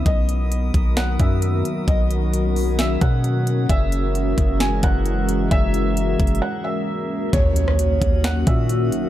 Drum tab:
HH |x-----x-----x-----x-----x-----x-----x-----x-----|x-----x-----x-----o-----x-----x-----x-----x-----|x-----x-----x-----x-----x-----x-----x-----x-----|x-----x-----x-----x-x-x-------------------------|
SD |------------------------o-----------------------|------------------------o-----------------------|------------------------o-----------------------|------------------------------------------------|
BD |o-----------------o-----------o-----------------|o-----------------------------o-----------------|o-----------------o-----------o-----------------|o-----------------o-----------------------------|

HH |x-----x-----x-----x-----x-----x-----x-----x-----|
SD |---------r--------------o-----------------------|
BD |o-----------------o-----------o-----------------|